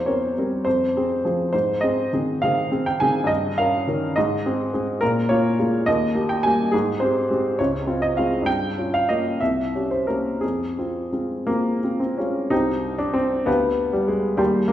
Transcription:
Already playing: E2 C5
0.06 C4 A#4 C#5
0.38 G3 C4 A#4
0.65 F2 C5
0.97 C4 G#4
1.25 F3 C4 G#4
1.53 G#2 C5
1.81 C4 G#4 D#5
2.13 D#3 C4 G#4
2.42 D#3 C4 G#4 F5
2.72 C4 G#4
2.86 G5
3.00 D#3 C4 G#4 G#5
3.24 G2 D#5
3.58 C#4 A#4 F5
3.87 D#3 C#4 A#4
4.16 G#2 D#5
4.46 C4 G#4
4.73 G#3 C4 G#4
5.01 A#2 A#4
5.29 A#3 F4 C#5
5.59 G#3 A#3 F4
5.86 D#2 D#5
6.15 A#3 G4
6.29 G5
6.43 G3 A#3 G4 G#5
6.72 G#2 G#4
7.00 C4 G4 C5
7.30 G#3 C4 G4
7.59 C#2 C#5
7.87 C4 F4
8.02 D#5
8.17 G#3 C4 F4 F5
8.42 G2 G5
8.78 C#4 F4
8.94 F5
9.09 A#3 C#4 F4 D#5
9.40 C2 E5
9.75 C#4 G4
9.91 C5
10.07 A#3 C#4 G4 A#4
10.41 F2 G#4
10.78 C4 F4
11.13 G#3 C4 F4
11.47 G#3 A#3 C4 F4
11.84 C4 F4
12.00 C4
12.18 G#3 C4 C#4 F4
12.50 C2 D#4 G4 C5 G5
12.98 D4
13.14 C4
13.46 D2 B3 G4 F5 G5
13.93 G3
14.08 G#3
14.37 D#2 G3 G4 G5 C6
14.68 A#3

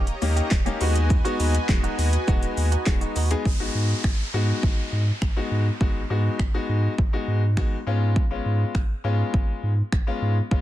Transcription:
Already playing: D#1 A#3 G4 C#5 D#5 A#5
0.07 muted clean electric guitar stroke, closed hi-hat, shaker
0.22 D#2 A#3 C#4 D#4 G4, muted clean electric guitar stroke, open hi-hat, shaker
0.36 A#3 C#4 G4, closed hi-hat, shaker
0.51 D#1, muted clean electric guitar stroke, kick, snare, clap, shaker
0.66 A#3 C#4 D#4 G4, closed hi-hat, shaker
0.80 D#2 G#3 B3 D#4 F#4 B4 G#5, open hi-hat, shaker
0.95 muted clean electric guitar stroke, closed hi-hat, shaker
1.10 muted clean electric guitar stroke, kick, shaker
1.25 G#3 B3 D#4 F#4, closed hi-hat, shaker
1.39 D#2 B3 D#4 F#4, open hi-hat, shaker
1.54 muted clean electric guitar stroke, closed hi-hat, shaker
1.69 D#1 G#3 B3 D#4 F#4, muted clean electric guitar stroke, kick, snare, clap, shaker
1.84 B3 D#4 F#4, closed hi-hat, shaker
1.98 D#2, muted clean electric guitar stroke, open hi-hat, shaker
2.13 muted clean electric guitar stroke, closed hi-hat, shaker
2.27 D#1 G#3 B3 D#4 F#4, kick, shaker
2.42 muted clean electric guitar stroke, closed hi-hat, shaker
2.57 D#2, muted clean electric guitar stroke, open hi-hat, shaker
2.72 B3 D#4 F#4, closed hi-hat, shaker
2.86 D#1 G#3 B3 D#4 F#4, kick, snare, clap, shaker
3.01 B3 D#4 F#4, closed hi-hat, shaker
3.16 D#2 B3 D#4 F#4, open hi-hat, shaker
3.31 G#3 B3 D#4 G#4, muted clean electric guitar stroke, closed hi-hat, shaker
3.45 G#1, kick, downlifter
3.60 G#1 G#3 B3 D#4 F#4
3.75 G#2
4.04 G#1, finger snap, kick
4.34 G#2 G#3 B3 D#4 F#4
4.63 G#1, kick
4.92 G#2
5.22 G#1, finger snap, kick
5.36 G#3 B3 D#4 F#4
5.51 G#2
5.81 G#1 G#3 B3 D#4 F#4, kick
5.95 G#1
6.10 G#2 G#3 B3 D#4 F#4
6.39 G#1, finger snap, kick
6.54 G#3 B3 D#4 F#4
6.69 G#2
6.98 G#1, kick
7.13 G#3 B3 D#4 F#4
7.28 G#2
7.57 G#1 G#3 B3 D#4 F#4, finger snap, kick
7.87 G#2 G#3 B3 C#4 F4
8.16 kick
8.31 G#1 G#3 B3 C#4 F4
8.46 G#2
8.75 G#1, finger snap, kick
9.04 G#2 G#3 B3 C#4 F4
9.34 G#1, kick
9.63 G#2
9.92 G#1, finger snap, kick
10.07 G#3 B3 C#4 F4
10.22 G#2
10.51 G#1 G#3 B3 C#4 F4, kick

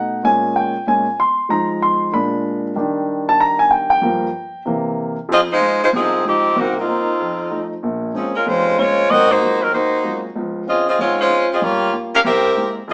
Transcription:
Already playing: B2 A3 D#4 F#5
0.23 A#2 G#3 C#4 G#5
0.56 G5
0.87 A#2 G#3 C#4 G#5
1.20 C6
1.49 F3 G#3 D#4 A#5
1.82 C6
2.12 A#2 G#3 D4 B5
2.76 D#3 G3 D4
3.29 A5
3.40 A#5
3.59 G#5
3.71 G5
3.90 G5
4.02 G2 F3 A#3
4.66 C3 E3 A#3
5.29 F2 F3 C4 F4 G#4 D#5
5.52 G#3 D#4 F4 C5
5.61 G#3 D#4 F4
5.84 G#3 D#4 F4 C5
5.93 C2 C3 F3 C4 D#4 G#4
6.25 F3 G#3 C4 D#4 F4 G4
6.56 C2 D#3 A#3 C4 F#4
6.79 A#3 C4 D#4 F4
6.88 A#3 C4 D#4
7.20 F2
7.51 F3 A3 D#4
7.83 A#1 A#2
8.14 F3 G#3 A#3 C4 C#4 G#4
8.35 G#3 C#4 F4 A#4
8.46 F1 F2 G#3 C#4 F4 C5
8.79 G#3 A#3 C4 C#4 F4 C5 C#5
9.10 G#2 C4 F#4 A#4 D#5
9.30 A#3 D#4 F#4 C5
9.42 F#3 G#3 A#3 C4 F4
9.62 F#3 C4 D#4 A#4
9.72 D#2 A#3 D#4 F#4 C5
10.04 F#3 G#3 A#3 C4 F4
10.36 C#2 F3
10.67 C4 C#4 F4 G#4 D#5
10.89 C4 F4 G#4 D#5
10.99 G#1 G#3 C4 F4 C#5
11.21 G#3 C#4 F4 C5
11.30 C4 C#4 F4
11.52 C4 F4 G#4 D#5
11.62 G2 G3 A#3 F4 G4 C#5
11.93 G3 A#3 F4
12.15 C#4 G4 A#4 F5
12.24 C2 C4 G4 A#4 E5
12.56 G#3 A#3 C4 E4
12.88 F2 C4

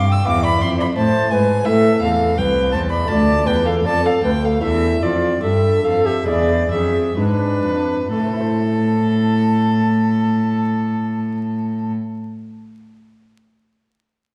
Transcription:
Already playing: G2 A3 C4 E4 D6
0.09 G5 E6
0.25 E2 B3 E4 F5 D6
0.29 E2
0.43 D5 B5
0.60 F2 E5 C6
0.78 D5 B5
0.96 A2 C5 A5
1.31 G#2 B4 G#5
1.63 A2 A3 C4 E4 E5
1.67 A2 A4
2.02 E2 A4 F5
2.38 C2 B4 G5
2.72 E2 C5 A5
2.90 D5 B5
3.06 A3 D4 F4 A5
3.10 D2 D5
3.46 E2 B4 G5
3.66 A4 F5
3.85 F2 D5 A5
4.04 A4 F5
4.23 D2 B4 G5
4.43 A4 F5
4.58 E2 A3 D4 E4
4.63 E2 A4 E5
5.02 F2 F4 D5
5.42 G2 A4 E5
5.83 F2 A4 F5
6.06 G4 E5
6.24 E2 G#3 D4 E4 G#4
6.28 E2 D5
6.71 F2 G#4 E5
7.16 G#2 D4 B4
7.63 F2
8.11 A2 A4 A5
8.20 A3
8.26 C4
8.33 E4
8.40 C5

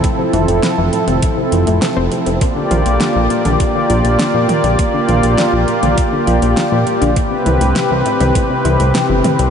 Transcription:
Already playing: F3 C4 E4 A4
0.04 A2, kick, closed hi-hat
0.19 C3
0.33 F1 E3, closed hi-hat, mid tom
0.48 F1 A2, closed hi-hat
0.63 C3, snare, closed hi-hat
0.78 F1 E3
0.93 A2, closed hi-hat
1.08 F1 C3, closed hi-hat, mid tom
1.22 A2, kick, closed hi-hat
1.37 C3
1.52 F1 E3, closed hi-hat
1.67 F1 A2, closed hi-hat
1.82 C3, snare, closed hi-hat
1.97 F1 C4
2.12 C3, closed hi-hat
2.26 F1 C3, closed hi-hat
2.41 A#2 A#3 F4 G4 D5, kick, closed hi-hat
2.56 D3
2.71 A#1 F3, closed hi-hat, mid tom
2.86 A#1 A#2, closed hi-hat
3.01 D3, snare, closed hi-hat
3.16 A#1 F3
3.30 A#2, closed hi-hat
3.45 A#1 D3, closed hi-hat, mid tom
3.60 A#2, kick, closed hi-hat
3.75 D3
3.90 A#1 F3, closed hi-hat
4.05 A#1 A#2, closed hi-hat
4.19 D3, snare, closed hi-hat
4.34 A#2 F3
4.49 A#2, closed hi-hat, mid tom
4.64 A#1 D3, closed hi-hat
4.79 A#2, kick, closed hi-hat
4.94 D3
5.09 A#1 F3, closed hi-hat, mid tom
5.23 A#1 A#2, closed hi-hat
5.38 D3, snare, closed hi-hat
5.53 A#1 F3
5.68 A#2, closed hi-hat
5.83 A#1 D3, closed hi-hat, mid tom
5.98 A#2, kick, closed hi-hat
6.13 D3
6.27 A#1 F3, closed hi-hat
6.42 A#1 A#2, closed hi-hat
6.57 D3, snare, closed hi-hat
6.72 A#2 F3
6.87 A#2, closed hi-hat
7.01 A#1 D3, closed hi-hat
7.16 A2 C3 C4 B4, kick, closed hi-hat
7.31 C3
7.46 C2 E3, closed hi-hat, mid tom
7.61 C2 A2, closed hi-hat
7.76 C3, snare, closed hi-hat
7.91 C2 E3
8.06 A2, closed hi-hat
8.20 C2 C3, closed hi-hat, mid tom
8.35 A2, kick, closed hi-hat
8.50 C3
8.65 C2 E3, closed hi-hat
8.80 C2 A2, closed hi-hat
8.95 C3, snare, closed hi-hat
9.10 G1 E3
9.24 A2, closed hi-hat, mid tom
9.39 C2 C3, closed hi-hat

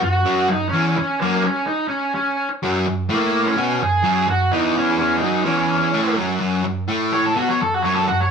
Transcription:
0.02 F#2 F#4
0.25 F#2 F#3
0.48 F#2 D#4
0.69 C#4
0.73 E2 E3
0.97 C#4, muted distorted electric guitar stroke
1.20 F#2 F#3 A#3
1.44 C#4
1.67 D#4
1.88 C#4
2.15 C#4
2.63 F#2 F#3
2.87 F#2
3.09 A2 A3
3.13 A#3
3.46 C#4
3.57 B2 B3
3.80 F#2 G#4
4.03 F#2 F#3
4.27 F#2 F#4
4.52 E2 E3 D#4
4.77 C#4
4.99 C#4
5.18 D#4
5.23 F#2 F#3
5.45 E2 E3 C#4
5.93 A2 A3
6.16 F#2 F#3
6.40 F#2 F#3
6.64 F#2
6.88 A2 A3
7.13 C#5
7.26 A4
7.36 B2 B3 F#4
7.49 C#5
7.61 F#2 A4
7.74 F#4
7.83 F#2 F#3 C#5
7.94 A4
8.08 F#2 F#4
8.21 C#5

